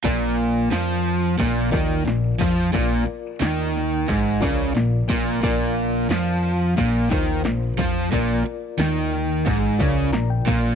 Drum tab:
HH |x-x-x-x-|x-x-x-x-|x-x-x-x-|x-x-x-x-|
SD |--o---o-|--oo--o-|--o---o-|--o---o-|
BD |o---oo-o|o---oo-o|o---oo-o|o---oo-o|